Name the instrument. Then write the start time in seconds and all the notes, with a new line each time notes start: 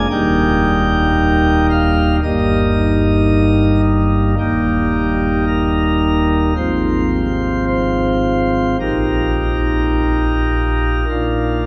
pipe organ
0.11 D#1 D#2 G3 A#3 D#4 G5
1.70 F5
2.23 G1 G2 G3 A#3 D#4 D#5
4.39 D#1 D#2 G3 A#3 D#4 G4
5.47 A#4
6.56 G#1 G#2 F3 C4 F4 C5
7.68 C5
8.80 A#1 A#2 A#3 D#4 G4 A#4
11.09 A#1 A#2 A#3 D4 F4